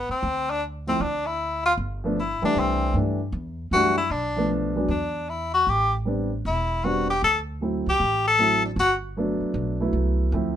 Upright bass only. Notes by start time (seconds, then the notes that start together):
0.09 muted upright bass stroke
0.23 D2
1.00 D2
1.78 G1
2.42 muted upright bass stroke
2.55 C2
2.94 G2
3.32 E2
3.71 F#2
4.10 B1
4.88 E2
5.67 A1
6.45 E1
7.22 D2
7.86 C#2
8.00 A1
8.76 G1
9.41 muted upright bass stroke
9.54 B1
9.93 C2
10.32 D2